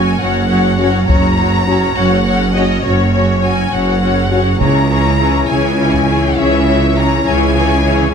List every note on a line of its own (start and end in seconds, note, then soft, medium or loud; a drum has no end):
0.00 0.19 F#3 soft
0.00 0.19 C#4 soft
0.00 0.19 F#4 soft
0.00 0.19 C#5 soft
0.00 0.20 G#5 medium
0.19 0.98 F#1 medium
0.19 0.97 F#2 medium
0.19 0.49 F#3 soft
0.19 0.48 C#4 soft
0.19 0.47 F#4 soft
0.19 0.47 C#5 soft
0.19 1.08 F#5 medium
0.48 0.77 F#3 soft
0.48 0.78 C#4 soft
0.48 0.77 F#4 soft
0.48 0.77 C#5 soft
0.78 1.07 F#3 soft
0.78 0.89 C#4 soft
0.78 1.07 C#4 soft
0.78 1.06 F#4 soft
0.78 0.88 F#4 soft
0.78 1.06 C#5 soft
1.07 1.86 F#1 medium
1.07 1.86 F#2 medium
1.07 1.37 F#3 soft
1.07 1.37 C#4 soft
1.07 1.36 F#4 medium
1.07 1.36 C#5 soft
1.07 1.95 A#5 medium
1.07 taiko medium
1.37 1.66 F#3 soft
1.37 1.66 C#4 soft
1.37 1.65 F#4 soft
1.37 1.65 C#5 soft
1.66 1.94 F#3 soft
1.66 1.77 C#4 soft
1.66 1.95 C#4 soft
1.66 1.95 F#4 soft
1.66 1.77 F#4 soft
1.66 1.95 C#5 soft
1.96 2.74 F#1 medium
1.96 2.74 F#2 medium
1.96 2.24 F#3 soft
1.96 2.24 C#4 soft
1.96 2.24 F#4 soft
1.96 2.24 C#5 soft
1.96 2.56 F#5 medium
2.25 2.53 F#3 soft
2.25 2.53 C#4 soft
2.25 2.54 F#4 soft
2.25 2.54 C#5 soft
2.54 2.83 F#3 soft
2.54 2.82 C#4 soft
2.54 2.65 C#4 soft
2.54 2.64 F#4 soft
2.54 2.83 F#4 soft
2.54 2.83 C#5 soft
2.54 2.84 D#5 medium
2.84 3.62 F#1 soft
2.84 3.62 F#2 medium
2.84 3.12 F#3 soft
2.84 3.12 C#4 soft
2.84 3.13 F#4 soft
2.84 3.13 C#5 soft
2.84 3.43 C#5 soft
3.13 3.41 F#3 soft
3.13 3.41 C#4 soft
3.13 3.42 F#4 soft
3.13 3.42 C#5 soft
3.42 3.71 F#3 soft
3.42 3.71 C#4 soft
3.42 3.53 C#4 soft
3.42 3.53 F#4 soft
3.42 3.72 F#4 soft
3.42 3.71 C#5 soft
3.42 3.73 G#5 medium
3.72 4.50 F#1 soft
3.72 4.50 F#2 soft
3.72 4.00 F#3 soft
3.72 4.00 C#4 soft
3.72 4.01 F#4 soft
3.72 4.01 C#5 soft
3.72 4.61 F#5 soft
4.02 4.29 F#3 soft
4.02 4.29 C#4 soft
4.02 4.30 F#4 soft
4.02 4.30 C#5 soft
4.30 4.59 F#3 soft
4.30 4.59 C#4 soft
4.30 4.42 C#4 soft
4.30 4.41 F#4 soft
4.30 4.60 F#4 soft
4.30 4.59 C#5 soft
4.60 5.39 C#2 soft
4.60 5.38 C#3 soft
4.60 4.89 E3 soft
4.60 4.89 C#4 soft
4.60 8.10 C#4 soft
4.60 8.10 E4 soft
4.60 4.89 G#4 soft
4.60 4.89 C#5 soft
4.60 5.48 A#5 medium
4.60 taiko soft
4.91 5.18 E3 soft
4.91 5.18 C#4 soft
4.91 5.19 G#4 soft
4.91 5.18 C#5 soft
5.19 5.48 E3 soft
5.19 5.48 C#4 soft
5.19 5.49 G#4 soft
5.19 5.48 C#5 soft
5.49 6.27 C#2 soft
5.49 6.27 C#3 soft
5.49 5.78 E3 soft
5.49 5.78 C#4 soft
5.49 5.78 G#4 soft
5.49 5.78 C#5 soft
5.49 6.37 G#5 soft
5.79 6.07 E3 soft
5.79 6.07 C#4 soft
5.79 6.06 G#4 soft
5.79 6.06 C#5 soft
5.94 taiko soft
6.07 6.36 E3 soft
6.07 6.36 C#4 soft
6.07 6.36 G#4 soft
6.07 6.36 C#5 soft
6.36 7.15 C#2 soft
6.36 7.14 C#3 soft
6.36 6.66 E3 soft
6.36 6.66 C#4 soft
6.36 6.65 G#4 soft
6.36 6.66 C#5 soft
6.36 6.96 E5 medium
6.67 6.95 E3 soft
6.67 6.95 C#4 soft
6.67 6.95 G#4 soft
6.67 6.95 C#5 soft
6.96 7.24 E3 soft
6.96 7.24 C#4 soft
6.96 7.25 G#4 soft
6.96 7.25 C#5 soft
6.96 7.26 A#5 medium
7.25 8.04 C#2 medium
7.25 8.03 C#3 medium
7.25 7.54 E3 soft
7.25 7.54 C#4 soft
7.25 7.54 G#4 soft
7.25 7.54 C#5 soft
7.25 8.14 G#5 medium
7.55 7.83 E3 soft
7.55 7.83 C#4 soft
7.55 7.83 G#4 soft
7.55 7.83 C#5 soft
7.84 8.13 E3 soft
7.84 8.13 C#4 soft
7.84 8.12 G#4 soft
7.84 8.13 C#5 soft